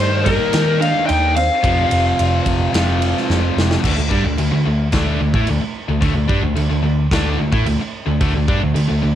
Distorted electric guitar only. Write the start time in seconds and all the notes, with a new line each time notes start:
Already playing: D#3 A#3 D#4
0.25 D#3 A#3 D#4
1.63 F2 C3 F3
2.73 F2 C3 F3
3.83 D3 A3
3.96 D3 A3
4.09 G3 D4
4.23 D3 A3
4.38 D3 A3
4.51 D3 A3
4.65 D3 A3
4.93 D3 A3 D4
5.20 D3 A3
5.35 A3 E4
5.49 D3 A3
5.61 muted distorted electric guitar stroke
5.88 D3 A3
6.01 D3 A3
6.14 D3 A3
6.28 G3 D4
6.41 D3 A3
6.55 D3 A3
6.70 D3 A3
6.83 D3 A3
7.12 D3 A3 D4
7.38 D3 A3
7.52 A3 E4
7.66 D3 A3
7.81 muted distorted electric guitar stroke
8.06 D3 A3
8.21 D3 A3
8.34 D3 A3
8.48 G3 D4
8.61 D3 A3
8.74 D3 A3
8.89 D3 A3
9.02 D3 A3